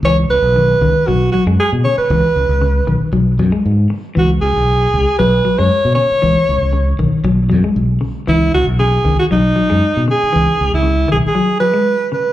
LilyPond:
<<
  \new Staff \with { instrumentName = "Alto saxophone" } { \time 4/4 \key cis \minor \tempo 4 = 117 cis''8 b'4. fis'8 fis'8 gis'8 cis''16 b'16~ | b'4.~ b'16 r2 r16 | fis'8 gis'4. b'8. cis''8. cis''8~ | cis''4. r2 r8 |
e'8 fis'8 gis'8. fis'16 dis'4. gis'8~ | gis'8. e'8. gis'16 gis'8. b'4 b'8 | }
  \new Staff \with { instrumentName = "Clean electric guitar" } { \clef bass \time 4/4 \key cis \minor e8 r8 dis8 dis8 fis8 fis16 gis8 r16 cis8 | e8 r8 cis8 dis8 fis8 fis16 gis8 r8. | e8 r4. fis8 fis16 gis8 r16 cis8 | e8 r8 cis8 dis8 fis8 fis16 gis8 r16 cis8 |
e8 r8 cis8 dis8 fis8 fis16 gis8 r16 cis8 | e8 r8 cis8 dis8 fis8 fis16 gis8 r16 cis8 | }
  \new Staff \with { instrumentName = "Fingered electric bass" } { \clef bass \time 4/4 \key cis \minor cis,8 cis,16 b,,8. cis,16 r16 b,,8 r16 fis,16 r16 b,16 r8 | cis,16 r16 cis,16 cis,8. b,,16 r16 b,,8 fis,16 r16 gis,8 r8 | cis,8 cis,16 b,,8. cis,16 r16 b,,8 r16 fis,16 r16 b,16 r8 | cis,16 r16 cis,16 cis,8. b,,16 r16 b,,8 fis,16 r16 b,,8 r8 |
cis,8 cis,16 b,,8. cis,16 r16 b,,8 r16 fis,16 r16 b,16 r8 | cis,16 r16 cis,16 cis,8. b,,16 r2 r16 | }
>>